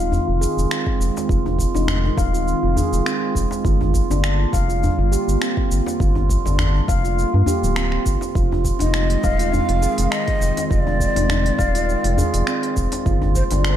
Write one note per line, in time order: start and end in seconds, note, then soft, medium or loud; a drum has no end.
0.00 0.19 D#1 medium
0.00 3.61 D#3 medium
0.00 3.61 G#3 medium
0.00 3.61 C4 medium
0.00 0.26 F4 medium
0.00 13.02 F4 medium
0.12 djembe bass medium
0.12 shaker soft
0.28 0.46 F1 medium
0.28 0.35 F4 medium
0.41 0.50 G#4 medium
0.41 djembe slap soft
0.41 shaker medium
0.57 0.66 F1 medium
0.57 shaker soft
0.70 0.86 C4 medium
0.70 finger snap loud
0.70 shaker soft
0.87 kick medium
1.00 1.10 F1 medium
1.00 shaker medium
1.17 djembe slap medium
1.17 shaker soft
1.29 1.66 F1 medium
1.29 1.44 F4 medium
1.29 kick loud
1.29 shaker soft
1.45 1.53 F4 medium
1.45 djembe tone medium
1.59 kick medium
1.59 shaker medium
1.74 2.10 F1 medium
1.74 2.16 D#4 medium
1.74 djembe slap medium
1.74 djembe tone medium
1.74 shaker soft
1.88 finger snap loud
1.88 djembe bass medium
1.88 shaker soft
2.05 djembe tone medium
2.17 2.54 D#1 medium
2.17 2.33 F5 medium
2.17 kick loud
2.17 djembe slap medium
2.17 shaker medium
2.34 2.61 F4 medium
2.34 shaker soft
2.48 shaker soft
2.63 2.81 F1 medium
2.63 2.71 F4 medium
2.76 2.86 G#4 medium
2.76 djembe bass medium
2.76 shaker medium
2.92 3.01 F1 medium
2.92 shaker soft
3.06 3.21 C4 medium
3.06 finger snap loud
3.06 shaker soft
3.35 3.46 F1 medium
3.35 kick medium
3.35 shaker medium
3.51 djembe slap medium
3.51 shaker soft
3.65 4.01 G1 medium
3.65 8.31 D3 medium
3.65 8.31 G3 medium
3.65 8.31 A#3 medium
3.65 3.80 F4 medium
3.65 kick loud
3.65 shaker soft
3.81 3.88 F4 medium
3.81 djembe tone medium
3.94 kick medium
3.94 shaker medium
4.10 4.46 G1 medium
4.10 4.52 D4 medium
4.10 djembe slap medium
4.10 djembe tone medium
4.10 shaker soft
4.24 finger snap medium
4.24 shaker soft
4.53 4.90 F1 medium
4.53 4.68 F5 medium
4.53 kick loud
4.53 djembe slap medium
4.53 shaker medium
4.69 4.97 F4 medium
4.69 shaker soft
4.83 djembe bass medium
4.83 shaker soft
4.98 5.16 G1 medium
4.98 5.06 F4 medium
5.12 5.21 G4 medium
5.12 djembe slap soft
5.12 shaker medium
5.28 5.37 G1 medium
5.28 shaker soft
5.41 5.56 C4 medium
5.41 finger snap medium
5.41 shaker soft
5.57 kick loud
5.71 5.81 G1 medium
5.71 shaker medium
5.86 djembe slap medium
5.86 shaker soft
6.00 6.37 G1 medium
6.00 6.15 F4 medium
6.00 kick loud
6.00 shaker soft
6.15 6.24 F4 medium
6.15 djembe tone medium
6.30 kick medium
6.30 shaker medium
6.45 6.81 G1 medium
6.45 6.87 D4 medium
6.45 djembe slap medium
6.45 djembe tone medium
6.45 shaker soft
6.59 finger snap loud
6.59 djembe bass medium
6.59 shaker soft
6.75 djembe tone medium
6.88 7.25 F1 medium
6.88 7.04 F5 medium
6.88 kick loud
6.88 djembe slap medium
6.88 djembe tone soft
6.88 shaker medium
7.04 7.32 F4 medium
7.04 shaker soft
7.19 shaker soft
7.34 7.43 G2 medium
7.34 7.41 F4 medium
7.46 7.56 G4 medium
7.46 djembe bass medium
7.46 shaker medium
7.63 7.98 D1 loud
7.63 shaker soft
7.76 7.92 C4 medium
7.76 finger snap medium
7.76 shaker soft
7.92 finger snap soft
8.06 8.16 G1 medium
8.06 kick medium
8.06 shaker medium
8.21 djembe slap medium
8.21 shaker soft
8.35 8.72 F1 medium
8.35 13.02 D#3 medium
8.35 13.02 G#3 medium
8.35 13.02 C4 medium
8.35 8.50 F4 medium
8.35 kick loud
8.35 shaker soft
8.52 8.59 F4 medium
8.52 djembe tone medium
8.65 kick medium
8.65 shaker medium
8.79 9.16 F1 medium
8.79 9.22 D#4 medium
8.79 9.54 D#5 loud
8.79 open hi-hat medium
8.79 djembe slap medium
8.79 djembe tone medium
8.79 shaker soft
8.94 finger snap medium
8.94 shaker soft
9.10 open hi-hat soft
9.24 9.60 D#1 medium
9.24 9.39 F5 medium
9.24 kick loud
9.24 djembe slap medium
9.24 shaker medium
9.39 9.67 F4 medium
9.39 open hi-hat medium
9.39 shaker soft
9.53 10.12 F5 loud
9.53 djembe bass medium
9.53 shaker soft
9.69 9.87 F1 medium
9.69 9.77 F4 medium
9.69 open hi-hat soft
9.82 9.91 G#4 medium
9.82 djembe slap soft
9.82 shaker medium
9.98 10.07 F1 medium
9.98 open hi-hat medium
9.98 shaker soft
10.11 10.27 C4 medium
10.11 10.69 D#5 medium
10.11 finger snap medium
10.11 shaker soft
10.28 kick loud
10.28 open hi-hat soft
10.41 10.52 F1 medium
10.41 shaker medium
10.57 open hi-hat medium
10.57 djembe slap medium
10.57 shaker soft
10.69 11.07 F1 medium
10.69 10.85 F4 medium
10.69 12.72 D5 loud
10.69 kick loud
10.69 shaker soft
10.87 10.94 F4 medium
10.87 djembe tone medium
11.00 kick medium
11.00 shaker medium
11.16 11.51 F1 medium
11.16 11.57 D#4 medium
11.16 open hi-hat medium
11.16 djembe slap medium
11.16 djembe tone medium
11.16 shaker soft
11.29 finger snap medium
11.29 djembe bass medium
11.29 shaker soft
11.44 open hi-hat soft
11.44 djembe tone medium
11.58 11.96 D#1 medium
11.58 11.74 F5 medium
11.58 kick loud
11.58 djembe slap medium
11.58 shaker medium
11.75 12.03 F4 medium
11.75 open hi-hat medium
11.75 shaker soft
11.89 shaker soft
12.04 12.23 F1 medium
12.04 12.12 F4 medium
12.04 open hi-hat soft
12.18 12.27 G#4 medium
12.18 djembe bass medium
12.18 shaker medium
12.34 12.43 F1 medium
12.34 open hi-hat medium
12.34 shaker soft
12.47 12.62 C4 medium
12.47 finger snap medium
12.47 shaker soft
12.63 open hi-hat soft
12.77 12.87 F1 medium
12.77 kick medium
12.77 shaker medium
12.92 open hi-hat medium
12.92 djembe slap medium
12.92 shaker soft
13.05 13.42 G1 loud
13.05 13.77 D3 medium
13.05 13.77 G3 medium
13.05 13.77 A#3 medium
13.05 13.77 F4 medium
13.05 13.21 F4 medium
13.05 kick loud
13.05 shaker soft
13.21 13.30 F4 medium
13.21 djembe tone medium
13.35 13.43 C5 medium
13.35 kick soft
13.35 shaker medium
13.51 13.77 G1 medium
13.51 13.77 D4 medium
13.51 open hi-hat medium
13.51 djembe slap medium
13.51 djembe tone medium
13.51 shaker soft
13.64 13.77 A#4 medium
13.64 finger snap medium
13.64 shaker soft